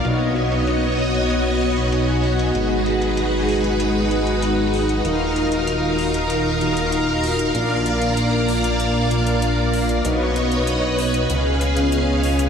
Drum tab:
HH |x-xxx-oxx-xxx-ox|x-xxx-oxx-xxx-ox|x-xxx-oxx-xxx-ox|x-xxx-oxx-xxx-ox|

HH |x-xxx-oxx-xxx-ox|